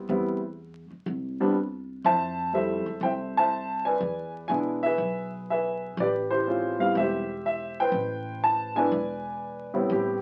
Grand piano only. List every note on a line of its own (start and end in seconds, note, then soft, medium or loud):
0.09 0.39 G3 medium
0.09 0.39 B3 medium
0.09 0.39 C4 medium
0.09 0.39 E4 medium
1.40 1.55 G3 medium
1.40 1.55 B3 medium
1.40 1.55 C4 medium
1.40 1.55 D4 medium
2.05 2.53 C5 medium
2.05 2.53 E5 medium
2.05 2.56 A5 loud
2.53 2.84 G3 medium
2.53 2.84 A3 medium
2.53 2.84 C4 medium
2.53 2.84 E4 medium
2.53 3.49 A4 medium
2.53 3.02 C5 medium
2.53 3.03 E5 medium
3.03 3.38 C5 medium
3.03 3.38 E5 medium
3.03 3.10 G5 medium
3.37 3.99 C5 medium
3.37 3.99 E5 medium
3.37 3.83 A5 loud
3.85 4.80 B4 medium
3.85 4.80 D5 medium
3.85 4.31 G#5 medium
4.48 4.80 G#3 medium
4.48 4.80 B3 medium
4.48 4.80 D4 medium
4.48 4.80 E4 medium
4.48 4.56 G#5 loud
4.83 5.49 G#4 medium
4.83 5.50 B4 medium
4.83 5.29 E5 loud
5.50 5.95 G#4 medium
5.50 5.96 B4 medium
5.50 5.95 E5 medium
6.00 6.30 G4 medium
6.00 6.93 B4 medium
6.00 6.07 D5 medium
6.30 6.79 E4 medium
6.30 6.98 G4 medium
6.30 6.76 C5 medium
6.47 6.76 G#3 medium
6.47 6.76 C4 medium
6.47 6.77 C#4 medium
6.47 6.77 F4 medium
6.79 7.22 G3 medium
6.79 7.22 B3 soft
6.79 7.22 C4 soft
6.79 7.22 E4 medium
6.79 6.95 F5 medium
6.97 7.92 G4 medium
6.97 7.80 C5 medium
6.97 7.44 E5 medium
7.46 7.79 E5 medium
7.80 8.73 B4 medium
7.80 8.73 C5 medium
7.80 8.46 G5 medium
8.44 8.77 A5 loud
8.75 8.90 G#3 medium
8.75 8.90 B3 medium
8.75 8.90 D4 medium
8.75 8.91 E4 medium
8.75 9.71 B4 medium
8.75 9.71 D5 medium
8.75 9.70 G#5 loud
9.74 10.22 A2 medium
9.74 10.22 G3 medium
9.74 10.22 B3 medium
9.74 10.22 C4 medium
9.74 10.22 E4 medium
9.92 10.22 G4 medium